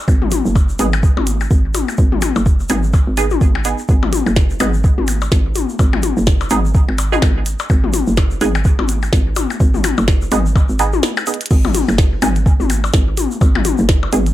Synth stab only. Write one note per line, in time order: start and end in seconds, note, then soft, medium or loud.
0.79 0.87 B3 medium
0.79 0.87 D#4 medium
0.79 0.87 G#4 medium
2.70 2.78 B3 medium
2.70 2.78 D#4 medium
2.70 2.78 G#4 medium
3.17 3.25 B3 medium
3.17 3.25 D#4 medium
3.17 3.25 G#4 loud
3.65 3.77 B3 medium
3.65 3.77 D#4 medium
3.65 3.77 G#4 medium
4.60 4.68 B3 medium
4.60 4.68 D#4 medium
4.60 4.68 G#4 medium
6.51 6.58 B3 medium
6.51 6.58 D#4 medium
6.51 6.58 G#4 medium
7.12 7.18 B3 medium
7.12 7.18 D#4 medium
7.12 7.18 G#4 medium
8.41 8.49 B3 medium
8.41 8.49 D#4 medium
8.41 8.49 G#4 medium
10.32 10.39 B3 medium
10.32 10.40 D#4 medium
10.32 10.39 G#4 medium
10.79 10.87 B3 medium
10.79 10.87 D#4 medium
10.79 10.87 G#4 loud
11.27 11.39 B3 medium
11.27 11.39 D#4 medium
11.27 11.39 G#4 medium
12.22 12.30 B3 medium
12.22 12.30 D#4 medium
12.22 12.30 G#4 medium
14.13 14.20 B3 medium
14.13 14.20 D#4 medium
14.13 14.20 G#4 medium